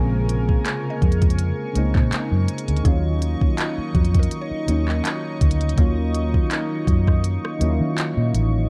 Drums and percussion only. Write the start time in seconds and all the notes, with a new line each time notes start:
0.29 closed hi-hat
0.49 kick
0.66 clap, closed hi-hat
1.02 kick, closed hi-hat
1.12 closed hi-hat
1.22 kick, closed hi-hat
1.30 closed hi-hat
1.39 closed hi-hat
1.76 closed hi-hat
1.95 kick, clap
2.12 clap, closed hi-hat
2.48 closed hi-hat
2.58 closed hi-hat
2.68 closed hi-hat
2.77 closed hi-hat
2.85 kick, closed hi-hat
3.22 closed hi-hat
3.41 kick
3.58 clap, closed hi-hat
3.95 kick, closed hi-hat
4.05 closed hi-hat
4.15 kick, closed hi-hat
4.23 closed hi-hat
4.31 closed hi-hat
4.68 closed hi-hat
4.88 clap
5.05 clap, closed hi-hat
5.41 kick, closed hi-hat
5.51 closed hi-hat
5.61 closed hi-hat
5.69 closed hi-hat
5.78 kick, closed hi-hat
6.15 closed hi-hat
6.34 kick
6.51 clap, closed hi-hat
6.87 kick, closed hi-hat
7.07 kick, cross-stick
7.24 closed hi-hat
7.45 cross-stick
7.61 closed hi-hat
7.98 clap, closed hi-hat
8.35 closed hi-hat